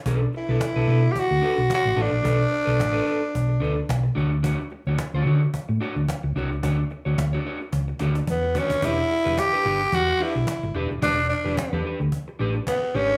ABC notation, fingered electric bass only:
X:1
M:4/4
L:1/16
Q:"Swing 16ths" 1/4=109
K:Edor
V:1 name="Fingered electric bass" clef=bass
B,,,2 z B,,, z B,,, B,,2 z D,, z B,,, z A,,, A,,, ^A,,, | B,,,2 z B,,, A,,,2 z2 B,,,2 D,,2 B,,,2 D,,2- | D,,2 z D,, z D,, D,2 z A,, z D,, z C,, =C,, ^C,, | D,,2 z D,, D,,2 z2 C,,2 D,,2 E,,2 ^D,,2 |
E,,,2 z E,,, z2 G,,,2 E,,2 z B,,, z G,,, E,,, ^D,,, | E,,,3 E,,, z E,, z D,, z2 A,,,2 z2 ^G,,,2 |]